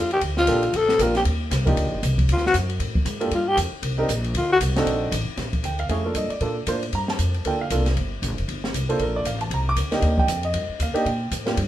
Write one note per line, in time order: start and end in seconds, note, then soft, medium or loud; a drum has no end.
0.00 0.21 F2 medium
0.00 0.12 F4 medium
0.11 0.22 G4 loud
0.11 ride soft
0.21 0.46 D2 medium
0.21 kick soft
0.21 ride medium
0.37 0.78 F4 loud
0.37 snare soft
0.47 0.72 A#1 medium
0.47 0.61 A#3 medium
0.47 0.61 D4 medium
0.47 0.62 F4 medium
0.47 0.62 G4 medium
0.47 0.62 A4 medium
0.47 kick soft
0.47 hi-hat pedal soft
0.47 ride medium
0.63 ride medium
0.73 0.98 A1 medium
0.73 1.04 A4 loud
0.73 kick soft
0.73 ride medium
0.89 snare medium
0.99 1.24 A#1 medium
0.99 1.13 A#3 medium
0.99 1.13 D4 medium
0.99 1.13 F4 medium
0.99 1.16 F4 medium
0.99 1.13 G4 medium
0.99 1.14 A#4 medium
0.99 kick soft
0.99 hi-hat pedal medium
0.99 ride medium
1.15 1.22 G4 medium
1.15 snare soft
1.15 ride soft
1.25 1.50 D#2 medium
1.25 kick soft
1.25 ride medium
1.51 1.76 C2 loud
1.51 kick soft
1.51 snare soft
1.51 hi-hat pedal medium
1.51 ride medium
1.66 2.00 A#3 medium
1.66 2.00 D4 medium
1.66 2.00 D#4 medium
1.66 2.00 F4 medium
1.66 2.01 G4 medium
1.66 kick medium
1.66 ride medium
1.77 1.85 D2 medium
1.77 kick soft
1.77 ride medium
1.85 1.93 A#1 medium
1.94 2.02 G1 medium
2.03 2.28 C2 loud
2.03 kick soft
2.03 hi-hat pedal medium
2.03 ride medium
2.18 kick medium
2.18 ride soft
2.28 2.53 D2 medium
2.28 kick soft
2.28 ride medium
2.32 2.45 F4 medium
2.37 snare soft
2.46 2.55 F#4 loud
2.46 snare soft
2.54 2.79 F#2 loud
2.54 kick soft
2.54 hi-hat pedal medium
2.54 ride medium
2.69 ride soft
2.80 3.05 A2 medium
2.80 kick soft
2.80 ride medium
2.95 kick medium
3.05 3.30 G#2 loud
3.05 kick soft
3.05 hi-hat pedal medium
3.05 ride medium
3.20 3.30 A#3 medium
3.20 3.30 D4 medium
3.20 3.30 F4 medium
3.20 3.30 G4 medium
3.20 3.31 A4 medium
3.20 ride soft
3.31 3.56 G2 medium
3.31 3.50 F4 medium
3.31 kick soft
3.31 ride medium
3.48 3.58 G4 loud
3.57 3.71 F2 loud
3.57 kick soft
3.57 hi-hat pedal medium
3.57 ride medium
3.72 muted upright bass stroke soft
3.83 4.08 C2 loud
3.83 kick soft
3.83 ride medium
3.98 4.07 C4 medium
3.98 4.07 D4 medium
3.98 4.08 D#4 medium
3.98 4.08 G4 medium
3.98 4.08 A#4 medium
4.08 4.34 A#1 loud
4.08 kick soft
4.08 hi-hat pedal medium
4.08 ride medium
4.24 ride soft
4.34 4.59 D2 loud
4.34 4.50 F4 medium
4.34 kick soft
4.34 ride medium
4.52 4.58 F#4 loud
4.60 4.85 C2 loud
4.60 kick soft
4.60 hi-hat pedal medium
4.60 ride medium
4.76 5.10 C4 medium
4.76 5.10 D4 medium
4.76 5.10 D#4 medium
4.76 5.10 F#4 medium
4.76 5.11 A4 loud
4.76 snare medium
4.76 ride medium
4.86 5.11 A#1 medium
4.86 kick soft
4.86 ride medium
5.12 5.26 A1 loud
5.12 kick soft
5.12 hi-hat pedal medium
5.12 ride medium
5.27 muted upright bass stroke soft
5.37 5.63 A#1 medium
5.37 kick soft
5.37 snare soft
5.37 ride medium
5.53 kick medium
5.53 ride soft
5.63 5.88 D2 medium
5.63 5.79 G5 medium
5.63 kick soft
5.63 hi-hat pedal soft
5.63 ride medium
5.79 6.13 F5 medium
5.79 ride soft
5.89 6.14 F2 medium
5.89 6.03 A3 medium
5.89 6.03 C#4 medium
5.89 6.03 E4 medium
5.89 6.04 G#4 medium
5.89 kick soft
5.89 ride medium
6.05 6.28 A#3 medium
6.05 6.28 D4 medium
6.05 6.28 F4 medium
6.05 6.28 A4 medium
6.15 6.29 G2 loud
6.15 6.31 D#5 medium
6.15 kick soft
6.15 hi-hat pedal medium
6.15 ride medium
6.30 6.64 D5 medium
6.30 muted upright bass stroke soft
6.30 ride soft
6.41 6.66 A#2 medium
6.41 6.55 A#3 medium
6.41 6.55 D4 medium
6.41 6.55 F4 medium
6.41 6.56 A4 medium
6.41 kick soft
6.41 ride medium
6.67 6.92 A2 medium
6.67 6.81 A#3 medium
6.67 6.81 D4 medium
6.67 6.81 F4 medium
6.67 6.81 C5 medium
6.67 kick soft
6.67 hi-hat pedal medium
6.67 ride medium
6.83 ride soft
6.93 7.18 G2 medium
6.93 7.09 A#5 loud
6.93 kick soft
6.93 ride medium
7.08 7.43 A5 medium
7.08 snare medium
7.19 7.44 F2 loud
7.19 kick soft
7.19 hi-hat pedal medium
7.19 ride medium
7.34 ride soft
7.45 7.70 D2 medium
7.45 7.59 A#3 medium
7.45 7.59 D4 medium
7.45 7.59 F4 medium
7.45 7.59 A4 medium
7.45 7.61 G5 medium
7.45 kick soft
7.45 ride medium
7.61 7.94 F5 medium
7.70 7.95 C2 loud
7.70 7.84 A#3 medium
7.70 7.85 D4 medium
7.70 7.85 F4 medium
7.70 7.85 A4 medium
7.70 kick soft
7.70 hi-hat pedal medium
7.70 ride medium
7.86 snare soft
7.86 ride soft
7.97 8.21 G1 medium
7.97 kick soft
7.97 ride medium
8.22 8.31 A1 loud
8.22 kick soft
8.22 hi-hat pedal medium
8.22 ride medium
8.31 8.38 G1 medium
8.38 8.47 F1 medium
8.38 ride soft
8.48 8.73 G1 medium
8.48 kick soft
8.48 ride medium
8.64 snare medium
8.74 8.99 C2 medium
8.74 kick soft
8.74 hi-hat pedal medium
8.74 ride medium
8.89 9.23 A#3 medium
8.89 9.23 D4 medium
8.89 9.23 F4 medium
8.89 9.23 A4 medium
8.89 9.00 C5 medium
8.89 ride soft
8.99 9.24 A#1 medium
8.99 9.15 A#4 medium
8.99 kick soft
8.99 ride medium
9.16 9.26 D5 loud
9.25 9.50 A1 loud
9.25 9.41 F5 medium
9.25 kick soft
9.25 hi-hat pedal medium
9.25 ride medium
9.41 9.51 A5 medium
9.41 ride soft
9.50 9.75 C2 medium
9.50 9.67 A#5 medium
9.50 kick soft
9.50 ride medium
9.69 9.74 D6 loud
9.76 10.01 D2 medium
9.76 kick soft
9.76 hi-hat pedal medium
9.76 ride medium
9.91 10.26 A#3 medium
9.91 10.26 D4 medium
9.91 10.26 D#4 medium
9.91 10.26 G4 medium
9.91 snare soft
9.91 ride soft
10.02 10.27 D#2 medium
10.02 kick soft
10.02 ride medium
10.18 10.42 G5 loud
10.18 kick medium
10.28 10.53 F2 loud
10.28 kick soft
10.28 hi-hat pedal medium
10.28 ride medium
10.43 10.78 D#5 medium
10.43 ride soft
10.54 10.68 G2 medium
10.54 kick soft
10.54 ride medium
10.69 muted upright bass stroke soft
10.80 10.94 D#2 loud
10.80 11.05 F5 medium
10.80 kick soft
10.80 hi-hat pedal medium
10.80 ride medium
10.94 11.04 A#3 medium
10.94 11.04 D4 medium
10.94 11.04 D#4 medium
10.94 11.04 G4 loud
10.94 muted upright bass stroke soft
10.94 ride medium
11.05 11.30 A#2 medium
11.05 11.30 G5 medium
11.05 kick soft
11.05 ride medium
11.31 11.56 A2 loud
11.31 kick soft
11.31 hi-hat pedal medium
11.31 ride medium
11.46 11.56 A#3 medium
11.46 11.56 D4 medium
11.46 11.56 F4 medium
11.46 11.56 G4 medium
11.46 snare medium
11.46 ride soft
11.57 11.68 G2 medium
11.57 kick soft
11.57 ride medium